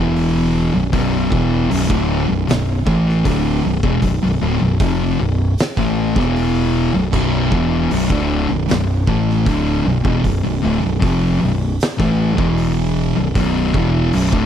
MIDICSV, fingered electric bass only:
0, 0, Header, 1, 2, 480
1, 0, Start_track
1, 0, Key_signature, 2, "minor"
1, 0, Tempo, 776197
1, 576, Time_signature, 4, 2, 24, 8
1, 8941, End_track
2, 0, Start_track
2, 0, Title_t, "Fingered electric bass"
2, 0, Program_c, 0, 33
2, 0, Note_on_c, 0, 28, 100
2, 433, Note_off_c, 0, 28, 0
2, 459, Note_on_c, 0, 23, 84
2, 569, Note_off_c, 0, 23, 0
2, 580, Note_on_c, 0, 23, 97
2, 800, Note_off_c, 0, 23, 0
2, 816, Note_on_c, 0, 28, 95
2, 1038, Note_off_c, 0, 28, 0
2, 1058, Note_on_c, 0, 23, 97
2, 1168, Note_off_c, 0, 23, 0
2, 1177, Note_on_c, 0, 26, 100
2, 1398, Note_off_c, 0, 26, 0
2, 1418, Note_on_c, 0, 23, 81
2, 1527, Note_off_c, 0, 23, 0
2, 1536, Note_on_c, 0, 23, 86
2, 1757, Note_off_c, 0, 23, 0
2, 1775, Note_on_c, 0, 33, 94
2, 1996, Note_off_c, 0, 33, 0
2, 2014, Note_on_c, 0, 26, 100
2, 2236, Note_off_c, 0, 26, 0
2, 2250, Note_on_c, 0, 23, 78
2, 2362, Note_off_c, 0, 23, 0
2, 2371, Note_on_c, 0, 28, 97
2, 2482, Note_off_c, 0, 28, 0
2, 2488, Note_on_c, 0, 23, 80
2, 2601, Note_off_c, 0, 23, 0
2, 2614, Note_on_c, 0, 23, 83
2, 2724, Note_off_c, 0, 23, 0
2, 2730, Note_on_c, 0, 26, 95
2, 2842, Note_off_c, 0, 26, 0
2, 2852, Note_on_c, 0, 23, 84
2, 2963, Note_off_c, 0, 23, 0
2, 2971, Note_on_c, 0, 29, 93
2, 3194, Note_off_c, 0, 29, 0
2, 3215, Note_on_c, 0, 23, 87
2, 3436, Note_off_c, 0, 23, 0
2, 3570, Note_on_c, 0, 33, 99
2, 3794, Note_off_c, 0, 33, 0
2, 3810, Note_on_c, 0, 28, 93
2, 4266, Note_off_c, 0, 28, 0
2, 4290, Note_on_c, 0, 23, 83
2, 4402, Note_off_c, 0, 23, 0
2, 4411, Note_on_c, 0, 23, 91
2, 4635, Note_off_c, 0, 23, 0
2, 4649, Note_on_c, 0, 28, 98
2, 4874, Note_off_c, 0, 28, 0
2, 4893, Note_on_c, 0, 23, 89
2, 5004, Note_off_c, 0, 23, 0
2, 5015, Note_on_c, 0, 26, 94
2, 5237, Note_off_c, 0, 26, 0
2, 5257, Note_on_c, 0, 23, 81
2, 5367, Note_off_c, 0, 23, 0
2, 5376, Note_on_c, 0, 23, 80
2, 5598, Note_off_c, 0, 23, 0
2, 5613, Note_on_c, 0, 33, 88
2, 5837, Note_off_c, 0, 33, 0
2, 5857, Note_on_c, 0, 26, 101
2, 6079, Note_off_c, 0, 26, 0
2, 6090, Note_on_c, 0, 23, 86
2, 6204, Note_off_c, 0, 23, 0
2, 6215, Note_on_c, 0, 28, 97
2, 6327, Note_off_c, 0, 28, 0
2, 6334, Note_on_c, 0, 23, 80
2, 6446, Note_off_c, 0, 23, 0
2, 6459, Note_on_c, 0, 23, 84
2, 6569, Note_off_c, 0, 23, 0
2, 6580, Note_on_c, 0, 26, 100
2, 6689, Note_off_c, 0, 26, 0
2, 6702, Note_on_c, 0, 23, 78
2, 6811, Note_off_c, 0, 23, 0
2, 6819, Note_on_c, 0, 29, 94
2, 7041, Note_off_c, 0, 29, 0
2, 7065, Note_on_c, 0, 23, 84
2, 7285, Note_off_c, 0, 23, 0
2, 7420, Note_on_c, 0, 33, 95
2, 7643, Note_off_c, 0, 33, 0
2, 7659, Note_on_c, 0, 28, 100
2, 8115, Note_off_c, 0, 28, 0
2, 8146, Note_on_c, 0, 23, 81
2, 8255, Note_off_c, 0, 23, 0
2, 8260, Note_on_c, 0, 23, 95
2, 8483, Note_off_c, 0, 23, 0
2, 8500, Note_on_c, 0, 28, 96
2, 8723, Note_off_c, 0, 28, 0
2, 8746, Note_on_c, 0, 23, 91
2, 8855, Note_off_c, 0, 23, 0
2, 8861, Note_on_c, 0, 26, 90
2, 8941, Note_off_c, 0, 26, 0
2, 8941, End_track
0, 0, End_of_file